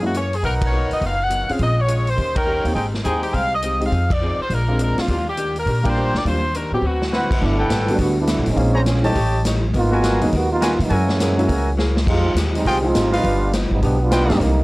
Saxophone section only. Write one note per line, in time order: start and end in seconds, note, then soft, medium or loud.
0.06 0.16 F#4 medium
0.17 0.33 C#5 medium
0.35 0.45 G#4 medium
0.45 0.53 A#4 medium
0.66 0.91 C#5 medium
0.93 1.02 D#5 medium
1.06 1.22 F5 medium
1.24 1.51 F#5 loud
1.52 1.61 F5 medium
1.62 1.78 D#5 medium
1.81 2.08 C#5 medium
2.09 2.37 C5 medium
2.37 2.65 A#4 medium
3.05 3.22 G#4 medium
3.23 3.33 G4 medium
3.34 3.52 F5 medium
3.55 3.80 D#5 medium
3.86 4.10 F5 medium
4.13 4.40 D5 medium
4.42 4.51 C5 medium
4.54 4.81 A#4 medium
4.84 4.98 A#4 medium
5.00 5.28 F4 medium
5.29 5.55 G4 medium
5.59 5.86 A#4 medium
5.89 6.16 C5 medium
6.18 6.27 D5 medium
6.28 6.53 C5 medium
6.56 6.73 A#4 medium
6.74 6.83 G4 medium
6.86 7.31 F#4 medium